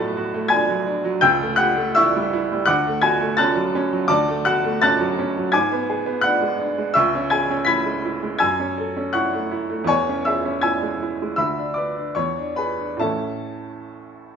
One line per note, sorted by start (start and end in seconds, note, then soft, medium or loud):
0.00 1.24 D2 medium
0.00 1.24 A2 medium
0.00 0.69 F#3 medium
0.00 0.34 A3 medium
0.00 0.51 D4 medium
0.00 0.17 F#4 medium
0.00 1.24 D5 medium
0.00 1.24 F#5 medium
0.00 1.24 A5 medium
0.00 1.24 B5 medium
0.00 1.25 D6 loud
0.00 1.24 F#6 loud
0.00 0.50 A6 medium
0.00 1.25 B6 loud
0.17 0.45 F#4 medium
0.34 0.62 A3 medium
0.48 0.79 D4 medium
0.48 1.17 G#5 medium
0.48 1.20 G#6 loud
0.69 0.97 F#3 medium
0.86 1.15 D4 medium
1.04 1.22 F#3 medium
1.21 2.63 C#2 medium
1.21 1.56 G5 medium
1.21 1.56 E6 medium
1.21 1.58 G6 loud
1.41 1.70 A3 medium
1.56 1.88 G4 medium
1.56 1.92 F#5 medium
1.56 1.94 F#6 loud
1.76 2.05 A3 medium
1.95 2.25 E4 medium
1.95 2.63 E5 medium
1.95 2.64 C#6 medium
1.95 2.67 E6 loud
2.16 2.44 G3 medium
2.33 2.61 E4 medium
2.52 2.68 G3 medium
2.66 4.05 D2 medium
2.66 3.00 F#5 medium
2.66 3.00 D6 medium
2.66 3.02 F#6 loud
2.87 3.14 A3 medium
3.02 3.31 F#4 medium
3.02 3.35 G#5 medium
3.02 3.37 G#6 loud
3.21 3.48 A3 medium
3.37 3.67 C#4 medium
3.37 4.05 A5 medium
3.37 4.05 F#6 medium
3.37 4.08 A6 loud
3.56 3.84 F#3 medium
3.75 4.03 C#4 medium
3.93 4.10 F#3 medium
4.08 5.50 D2 medium
4.08 4.42 D5 medium
4.08 4.42 A5 medium
4.08 4.44 D6 loud
4.28 4.56 A3 medium
4.45 4.75 F#4 medium
4.45 4.79 F#5 medium
4.45 4.81 F#6 loud
4.64 4.93 A3 medium
4.82 5.11 C#4 medium
4.82 5.50 A5 medium
4.82 5.50 F#6 medium
4.82 5.54 A6 loud
5.00 5.29 F#3 medium
5.19 5.47 C#4 medium
5.37 5.54 F#3 soft
5.52 6.94 G#2 medium
5.52 6.21 G#5 medium
5.52 6.21 D6 medium
5.52 6.24 G#6 loud
5.72 6.00 B3 medium
5.90 6.18 G#4 medium
6.06 6.35 B3 medium
6.21 6.53 D4 medium
6.21 6.93 F#5 medium
6.21 6.95 F#6 loud
6.42 6.71 G#3 medium
6.59 6.89 D4 medium
6.78 6.97 G#3 soft
6.94 8.37 C#2 medium
6.94 7.30 E5 medium
6.94 7.30 C#6 medium
6.94 7.32 E6 loud
7.15 7.44 C#4 medium
7.30 7.61 G#4 medium
7.30 7.66 G#5 medium
7.30 7.65 G#6 medium
7.51 7.80 C#4 soft
7.65 7.97 E4 medium
7.65 8.36 B5 medium
7.65 8.36 G#6 medium
7.65 8.39 B6 loud
7.85 8.15 G#3 soft
8.05 8.34 E4 soft
8.23 8.41 G#3 soft
8.39 9.84 F#2 medium
8.39 9.10 G#5 medium
8.39 9.10 E6 medium
8.39 9.13 G#6 loud
8.60 8.89 C#4 soft
8.78 9.07 A4 soft
8.97 9.26 C#4 soft
9.13 9.44 E4 soft
9.13 9.83 F#5 medium
9.13 9.83 C#6 medium
9.13 9.87 F#6 medium
9.33 9.62 A3 soft
9.51 9.81 E4 soft
9.69 9.88 A3 soft
9.84 11.34 E1 medium
9.84 11.32 E2 medium
9.84 10.23 C#5 medium
9.84 10.25 C#6 medium
9.88 10.23 G#5 medium
10.09 10.38 C#4 soft
10.25 10.56 G#4 soft
10.25 10.61 E5 medium
10.25 10.61 E6 medium
10.45 10.75 C#4 soft
10.61 10.93 E4 soft
10.61 11.34 G#5 medium
10.61 11.34 E6 medium
10.61 11.38 G#6 medium
10.82 11.12 G#3 soft
11.02 11.32 E4 soft
11.22 11.40 G#3 soft
11.36 12.14 D2 soft
11.36 11.74 E5 medium
11.36 11.74 B5 medium
11.36 11.75 E6 medium
11.58 11.89 D4 soft
11.74 12.09 B4 soft
11.74 12.13 D5 soft
11.74 12.15 D6 medium
11.96 12.17 D4 soft
12.15 13.00 E2 soft
12.15 12.56 C#5 soft
12.15 12.58 C#6 medium
12.38 12.72 D4 soft
12.56 12.94 G#4 soft
12.56 12.98 B4 soft
12.56 13.02 B5 medium
12.79 13.02 D4 soft
12.97 14.36 A2 soft
12.97 14.36 A3 soft
12.97 14.36 C#4 soft
12.97 14.36 E4 soft
12.97 14.36 A4 soft
12.97 14.36 E5 soft
12.97 14.36 A5 medium
13.01 14.36 A1 soft